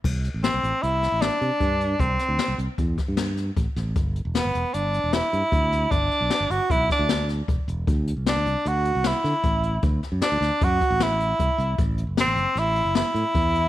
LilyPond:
<<
  \new Staff \with { instrumentName = "Tenor saxophone" } { \time 5/4 \key c \lydian \tempo 4 = 153 r4 c'4 e'4 d'2 | c'4. r2. r8 | r4 b4 d'4 e'2 | d'4. fis'8 e'8 d'4 r4. |
r4 d'4 fis'4 e'2 | r4 d'4 fis'4 e'2 | r4 c'4 e'4 e'2 | }
  \new Staff \with { instrumentName = "Fingered electric bass" } { \clef bass \time 5/4 \key c \lydian c,8. a,,8 c,16 a,,16 r16 c,8. a,,8 r16 c16 r16 g,4 | c,8 r16 d,16 r16 c,16 c,16 r16 e,8 r16 g,4~ g,16 a,,16 r16 a,,8 | g,,8. e,,8 g,,16 e,,16 r16 g,,8. e,,8 r16 g,16 r16 d,4 | g,,8 r16 b,,16 r16 g,,16 g,,16 r16 b,,8 r16 d,4~ d,16 e,,16 r16 e,,8 |
d,8. c,8 d,16 c,16 r16 d,8. c,8 r16 d16 r16 a,,4 | d,8 r16 fis,16 r16 d,16 d,16 r16 fis,8 r16 a,,4~ a,,16 c,16 r16 c,8 | a,,8. fis,,8 a,,16 fis,,16 r16 a,,8. fis,,8 r16 a,16 r16 e,4 | }
  \new DrumStaff \with { instrumentName = "Drums" } \drummode { \time 5/4 <cymc bd>8 hh8 <hh sn>8 hh8 hh8 <hh sn>8 <hh sn>8 hh8 <hh bd>8 hh8 | <hh bd>8 <hh sn>8 <hh sn>8 hh8 <hh bd>8 <hh bd sn>8 <hh sn>8 <hh sn>8 <hh bd>8 <hh sn>8 | <hh bd>8 hh8 <hh sn>8 hh8 hh8 hh8 <hh sn>8 hh8 <hh bd>8 <hh sn>8 | <hh bd>8 hh8 <hh sn>8 hh8 <hh bd>8 <hh bd sn>8 <hh sn>8 <hh sn>8 <hh bd>8 hh8 |
<hh bd>8 hh8 <hh sn>8 hh8 hh8 hh8 <hh sn>8 <hh sn>8 <hh bd>8 hh8 | <hh bd>8 <hh sn>8 <hh sn>8 <hh sn>8 <hh bd>8 <hh bd>8 <hh sn>8 hh8 <hh bd>8 hh8 | <hh bd>8 hh8 <hh sn>8 hh8 <hh sn>8 hh8 <hh sn>8 hh8 <hh bd>8 hh8 | }
>>